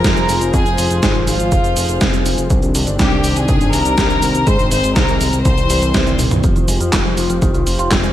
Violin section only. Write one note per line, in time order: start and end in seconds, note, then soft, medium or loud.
0.00 0.54 A#4 loud
0.00 0.54 A#5 medium
0.54 0.99 G#4 loud
0.54 1.00 G#5 medium
1.03 1.14 G#4 medium
1.03 1.14 G#5 medium
1.27 2.22 F4 medium
1.27 2.22 F5 medium
3.00 3.34 G4 medium
3.00 3.34 G5 medium
3.36 3.73 G#4 loud
3.36 3.74 G#5 medium
3.73 4.47 A#4 loud
3.73 4.47 A#5 medium
4.47 4.70 C5 loud
4.47 4.71 C6 medium
4.71 4.94 C5 loud
4.71 4.95 C6 medium
4.96 5.42 A#4 loud
4.96 5.42 A#5 medium
5.46 6.19 C5 loud
5.46 6.20 C6 medium